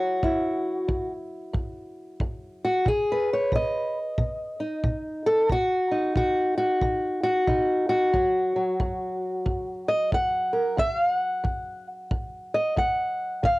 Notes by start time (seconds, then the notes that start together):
Already playing: F#2 F#3 E4 F#4
0.23 F#2 E4, kick
0.88 F#2, kick
1.53 F#2, kick
2.20 F#2, kick
2.65 F#4
2.85 B2 G#4, kick
3.12 B4
3.33 C#5
3.52 B2 D#5, kick
4.18 B2, kick
4.60 D#4
4.84 B2, kick
5.26 A4
5.50 B2 F#4, kick
5.91 D#4
6.16 B2 F#4, kick
6.57 F#4
6.81 B2, kick
7.23 F#4
7.47 B2 D#4, kick
7.89 F#4
8.13 F#2 F#3, kick
8.56 F#3
8.80 F#2, kick
9.46 F#2, kick
9.88 D#5
10.12 F#2 F#5, kick
10.53 A#4
10.77 F#2 E5, kick
10.91 F5
11.15 F#5
11.44 F#2, kick
12.11 F#2, kick
12.54 D#5
12.76 F#2 F#5, kick
13.43 C#3 F5, kick